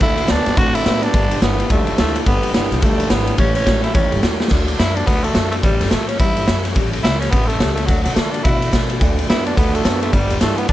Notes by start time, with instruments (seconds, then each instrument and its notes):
0.00 upright bass D2, steel-string acoustic guitar D3 A3 D4 F#4 A4, clean electric guitar D3 A3, tenor saxophone E4, kick, ride
0.17 steel-string acoustic guitar D4 F#4 A4, ride
0.28 upright bass D2, clean electric guitar D3 B3, steel-string acoustic guitar A3 D4 F#4 A4, tenor saxophone D4, snare, ride
0.46 upright bass F#2, steel-string acoustic guitar D4 F#4 A4, snare, ride
0.57 upright bass A2, steel-string acoustic guitar D3 A3 D4 F#4 A4, clean electric guitar D3 C4, tenor saxophone F#4, kick, ride
0.73 steel-string acoustic guitar D4 F#4 A4, tenor saxophone E4, ride
0.85 upright bass A2, clean electric guitar D3 B3, steel-string acoustic guitar A3 D4 F#4 A4, snare, ride
1.02 tenor saxophone D4, steel-string acoustic guitar D4 F#4 A4, ride
1.13 upright bass G1, clean electric guitar G2 D3, steel-string acoustic guitar G3 D4 G4 B4, kick, ride
1.30 steel-string acoustic guitar D4 G4 B4, ride
1.41 upright bass G1, clean electric guitar G2 E3, steel-string acoustic guitar G3 D4 G4 B4, tenor saxophone B3, snare, ride
1.59 steel-string acoustic guitar D4 G4 B4, ride
1.69 upright bass D2, clean electric guitar G2 F3, steel-string acoustic guitar G3 D4 G4 B4, tenor saxophone A3, kick, ride
1.86 upright bass E2, steel-string acoustic guitar D4 G4 B4, ride
1.97 upright bass D2, clean electric guitar G2 E3, steel-string acoustic guitar G3 D4 G4 B4, tenor saxophone A3, snare, ride
2.14 steel-string acoustic guitar D4 G4 B4, ride
2.25 upright bass G1, clean electric guitar G2 D3, steel-string acoustic guitar G3 D4 G4 B4, tenor saxophone B3, kick, ride
2.42 steel-string acoustic guitar D4 G4 B4, ride
2.53 upright bass G1, clean electric guitar G2 E3, steel-string acoustic guitar G3 D4 G4 B4, tenor saxophone B3, snare, ride
2.70 upright bass B1, steel-string acoustic guitar D4 G4 B4, snare, ride
2.77 tenor saxophone B3
2.82 upright bass D2, clean electric guitar G2 F3, steel-string acoustic guitar G3 D4 G4 B4, tenor saxophone A3, kick, ride
2.98 steel-string acoustic guitar D4 G4 B4, ride
3.10 upright bass G#1, clean electric guitar G2 E3, steel-string acoustic guitar G3 D4 G4 B4, tenor saxophone B3, snare, ride
3.26 steel-string acoustic guitar D4 G4 B4, ride
3.37 upright bass A1, steel-string acoustic guitar A2 E3 G3 C#4 G4 A4, clean electric guitar A2 E3, tenor saxophone C#4, kick, ride
3.54 steel-string acoustic guitar G3 C#4 G4 A4, tenor saxophone C#4, ride
3.65 upright bass A1, clean electric guitar A2 F#3, steel-string acoustic guitar G3 C#4 G4 A4, kick, snare, ride
3.82 steel-string acoustic guitar G3 C#4 G4 A4, tenor saxophone E4, ride
3.93 upright bass E2, steel-string acoustic guitar A2 E3 G3 C#4 G4 A4, clean electric guitar A2 G3, tenor saxophone C#4, kick, ride
4.10 upright bass G2, steel-string acoustic guitar G3 C#4 G4 A4, ride
4.22 upright bass E2, clean electric guitar A2 F#3, steel-string acoustic guitar G3 C#4 G4 A4, snare, ride
4.38 steel-string acoustic guitar G3 C#4 G4 A4, snare
4.48 upright bass D2, steel-string acoustic guitar D3 A3 D4 F#4 A4, kick, snare, crash
4.66 steel-string acoustic guitar D4 F#4 A4, ride
4.78 upright bass F#2, steel-string acoustic guitar A3 D4 F#4 A4, tenor saxophone E4, snare, ride
4.95 tenor saxophone D4, steel-string acoustic guitar D4 F#4 A4, ride
5.06 upright bass D2, steel-string acoustic guitar D3 A3 D4 F#4 A4, tenor saxophone B3, kick, ride
5.23 tenor saxophone A3, steel-string acoustic guitar D4 F#4 A4, ride
5.35 upright bass F#2, steel-string acoustic guitar A3 D4 F#4 A4, snare, ride
5.51 tenor saxophone A3, steel-string acoustic guitar D4 F#4 A4, ride
5.62 upright bass A1, steel-string acoustic guitar A2 E3 G3 C#4 G4 A4, tenor saxophone G3, kick, ride
5.81 upright bass F#2, steel-string acoustic guitar G3 C#4 G4 A4, snare, ride
5.91 upright bass A2, steel-string acoustic guitar G3 C#4 G4 A4, tenor saxophone A3, snare, ride
6.07 steel-string acoustic guitar G3 C#4 G4 A4, tenor saxophone C#4, ride
6.19 upright bass G2, steel-string acoustic guitar A2 E3 G3 C#4 G4 A4, tenor saxophone E4, kick, ride
6.35 steel-string acoustic guitar G3 C#4 G4 A4, ride
6.47 upright bass F#2, steel-string acoustic guitar G3 C#4 G4 A4, snare, ride
6.64 steel-string acoustic guitar G3 C#4 G4 A4, snare, ride
6.74 upright bass A1, steel-string acoustic guitar A2 E3 G3 C#4 G4 A4, kick, ride
6.91 steel-string acoustic guitar G3 C#4 G4 A4, ride
7.03 upright bass C#2, steel-string acoustic guitar G3 C#4 G4 A4, tenor saxophone E4, snare, ride
7.20 steel-string acoustic guitar G3 C#4 G4 A4, tenor saxophone C#4, snare, ride
7.30 upright bass A1, steel-string acoustic guitar A2 E3 G3 C#4 G4 A4, tenor saxophone B3, kick, ride
7.47 tenor saxophone A3, steel-string acoustic guitar C#4 G4 A4, ride
7.52 steel-string acoustic guitar G3
7.60 upright bass C#2, steel-string acoustic guitar G3 C#4 G4 A4, snare, ride
7.74 tenor saxophone A3, steel-string acoustic guitar C#4 G4 A4, ride
7.79 steel-string acoustic guitar G3
7.86 upright bass D2, steel-string acoustic guitar D3 A3 D4 F#4 A4, tenor saxophone F#3, kick, ride
8.04 upright bass B2, tenor saxophone F#3, steel-string acoustic guitar D4 F#4 A4, snare, ride
8.15 upright bass D3, tenor saxophone A3, steel-string acoustic guitar A3 D4 F#4 A4, snare, ride
8.32 tenor saxophone D4, steel-string acoustic guitar D4 F#4 A4, ride
8.43 upright bass B2, steel-string acoustic guitar D3 A3 D4 F#4 A4, tenor saxophone E4, kick, ride
8.61 steel-string acoustic guitar D4 F#4 A4, ride
8.73 upright bass B2, steel-string acoustic guitar A3 D4 F#4 A4, kick, snare, ride
8.90 steel-string acoustic guitar D4 F#4 A4, ride
9.01 upright bass D2, steel-string acoustic guitar D3 A3 D4 F#4 A4, clean electric guitar D3 A3, kick, ride
9.18 steel-string acoustic guitar D4 F#4 A4, ride
9.29 upright bass F#2, clean electric guitar D3 B3, steel-string acoustic guitar A3 D4 F#4 A4, tenor saxophone E4, snare, ride
9.46 tenor saxophone D4, steel-string acoustic guitar D4 F#4 A4, ride
9.56 upright bass D2, clean electric guitar D3 A3, steel-string acoustic guitar D3 A3 D4 F#4 A4, tenor saxophone B3, kick, ride
9.73 tenor saxophone A3, steel-string acoustic guitar D4 F#4 A4, ride
9.85 upright bass F#2, clean electric guitar D3 B3, steel-string acoustic guitar A3 D4 F#4 A4, snare, ride
10.02 tenor saxophone A3, steel-string acoustic guitar D4 F#4 A4, ride
10.12 upright bass G1, clean electric guitar G2 D3, steel-string acoustic guitar G3 D4 G4 B4, tenor saxophone G3, kick, ride
10.30 upright bass E2, steel-string acoustic guitar D4 G4 B4, ride
10.41 clean electric guitar G2 E3, upright bass G2, steel-string acoustic guitar G3 D4 G4 B4, tenor saxophone A3, snare, ride
10.57 tenor saxophone B3, steel-string acoustic guitar D4 G4 B4, ride
10.69 upright bass E2, clean electric guitar G2 D3, steel-string acoustic guitar G3, tenor saxophone D4, kick, ride